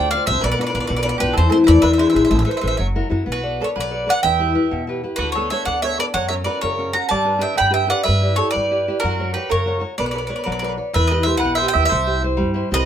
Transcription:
Already playing: D2 A3
0.11 D4 D5 F5
0.15 F4 C5
0.26 C2 D4 F4 C5 E5
0.31 C5
0.41 B1 B2 B4 D5
0.46 B4
0.52 B4 D5
0.58 B3 D4 F4 D5
0.63 B4 D5
0.70 B4
0.75 B1 B3 D4 F4 B4 D5
0.80 D5
0.85 B4 D5
0.89 B1 B2 B4
0.96 B4 D5
1.03 B3 D4 F4 B4 D5
1.09 D5
1.18 B1 B3 D4 F4 G4 B4
1.33 E3 A4
1.37 E2 C5
1.50 A3 C4 E4 A4 C5
1.64 A3 C4 E4 B4 C5 D5 E5
1.68 E2
1.82 E2 E3 B4 E5
1.91 C5 E5
1.98 D4 E4 G#4 C5 E5
2.07 C5 E5
2.12 A#1 D4 E4 G#4 C5 E5
2.20 C5
2.25 C5 E5
2.30 A1 A3 E5
2.35 C5 E5
2.43 A4 B4 C5 E5
2.50 C5 E5
2.57 C5 E5
2.61 A1 A4 B4 C5 E5
2.65 C5 E5
2.71 C5
2.77 F#1 F#3 C#5 E5
2.95 E4 F#4 A#4
3.10 F#2 E4 F#4 A#4
3.26 B1 B3
3.32 F#4 B4
3.43 A4 B4 D5
3.60 A4 B4 C#5 D5
3.76 B1 F#3 B4
3.80 D5
3.91 A4 B4 D5
4.06 A4 B4 D5 F#5
4.22 E2 E3 E5 G5
4.39 E4 G4 B4
4.55 E4 G4 B4
4.71 E2 B2
4.87 E4 G4 B4
5.03 E4 G4 B4
5.16 D2 F#4 B4
5.22 D3
5.32 A4 C#5
5.36 B3 D4 A4
5.50 B3 D4 A4 C#5 E5
5.65 D2 D3 D5 F#5
5.82 B3 D4 A4 C#5 E5
5.99 B3 D4 A4 B4 D5
6.14 F#2 F#3 C#5 F#5
6.29 C#4 F#4 A#4 C#5 E5
6.44 C#4 F#4 A#4 B4 D5
6.61 F#2 C#3 A#4 C#5
6.78 C#4 F#4 A#4
6.93 C#4 F#4 A#4 F#5 A#5
7.09 G2 G3 D5 A5
7.25 D4 G4 B4
7.38 D4 G4 B4 G5
7.43 E5
7.55 D3 G5 B5
7.61 G2
7.70 D4 G4 B4 E5 G5
7.87 D4 G4 B4 D5 F#5
8.04 G3 B4 E5
8.08 G2
8.21 E4 G4 D5
8.36 E4 G4 A4 C#5 D5
8.51 G3 B4 D5
8.56 G2
8.71 E4 G4 D5
8.88 E4 G4 D5
9.00 F#3 F#4 A#4
9.04 F#2
9.19 F#4 A#4 C#5
9.34 F#4 G4 A#4 B4 C#5
9.50 F#2 C#3 A#4 C#5
9.66 F#4 A#4 C#5
9.80 F#4 A#4 C#5
9.98 B1 B3 B4 D5
10.06 B4 D5
10.11 B4 C#5 D5
10.16 B4 D5
10.21 B4
10.27 B4 C#5 D5
10.36 B4 D5
10.44 B1 F#3 B4 D5
10.52 B4 D5
10.59 B4 C#5 D5
10.64 D5
10.69 B4
10.77 B4 C#5 D5
10.93 E2 E3 B4 E5
11.07 G4 B4 D#5
11.12 E4 B4
11.23 E4 G4 C5 E5
11.27 B4
11.37 B4 F#5
11.43 B1 B2
11.55 C5 E5
11.61 E4 G4 B4
11.68 G5
11.74 D#2 E4 G4 B4 E5
11.85 C5 E5
11.91 C2 C3
12.07 E4 G4 C5
12.22 E4 G4 C5
12.37 G2 G3
12.54 E4 G4 C5
12.71 C2 E4 G4 C5 D#5
12.75 B4

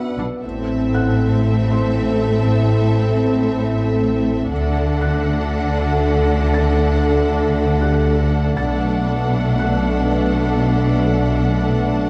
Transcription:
Already playing: B3 D4 F#4 B4 D5 E5 F#5 E6
0.18 B1 B2 D4
0.43 A1 A2 C4 E4 A4 E5
0.94 F#5 F#6
1.71 C6
4.50 D2 D3 A3 D4 A4 D5 F#5
5.01 F#5 F#6
6.54 A6
7.81 G4 F#6
8.57 B1 B2 A3 D4 A4 B4 D5 F#5 A6
9.59 F#5 F#6

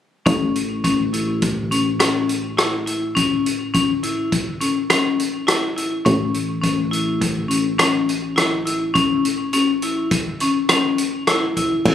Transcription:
0.26 A1 C#4, kick, closed hi-hat
0.56 closed hi-hat
0.84 C#4, kick, closed hi-hat
1.13 E4, closed hi-hat
1.42 kick, closed hi-hat
1.71 C#4, closed hi-hat
1.99 C#4, cross-stick, closed hi-hat
2.29 closed hi-hat
2.57 E4, cross-stick, closed hi-hat
2.86 E4, closed hi-hat
3.15 C#4, kick, closed hi-hat
3.46 closed hi-hat
3.74 C#4, kick, closed hi-hat
4.03 E4, closed hi-hat
4.32 kick, closed hi-hat
4.61 C#4, closed hi-hat
4.90 C#4, cross-stick, closed hi-hat
5.19 closed hi-hat
5.47 E4, cross-stick, closed hi-hat
5.76 E4, closed hi-hat
6.05 A1 C#4, kick, closed hi-hat
6.34 closed hi-hat
6.62 C#4, kick, closed hi-hat
6.91 E4, closed hi-hat
7.21 kick, closed hi-hat
7.49 C#4, closed hi-hat
7.79 C#4, cross-stick, closed hi-hat
8.09 closed hi-hat
8.36 E4, cross-stick, closed hi-hat
8.65 E4, closed hi-hat
8.94 C#4, kick, closed hi-hat
9.25 closed hi-hat
9.53 C#4, closed hi-hat
9.82 E4, closed hi-hat
10.11 kick, closed hi-hat
10.40 C#4, closed hi-hat
10.69 C#4, cross-stick, closed hi-hat
10.98 closed hi-hat
11.27 E4, cross-stick, closed hi-hat
11.57 E4, kick, closed hi-hat
11.85 A1 E4, kick, crash

